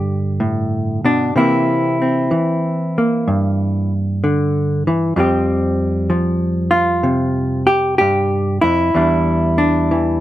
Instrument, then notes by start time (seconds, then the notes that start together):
hollow-body jazz guitar
Already playing: G2 D3 B3 D4 G4
0.40 A2
1.05 B2 D4
1.36 C3 E3 A#3 C4 E4
2.02 C4
2.31 E3
2.98 A#3
3.28 G2
4.24 D3
4.87 E3
5.16 F2 F3 G3 C4 G4
6.10 F3
6.71 F4
7.03 C3
7.67 G4
7.98 G2 G4
8.61 F2 E4
8.94 E2 E3 G3 D4
9.58 D4
9.91 E3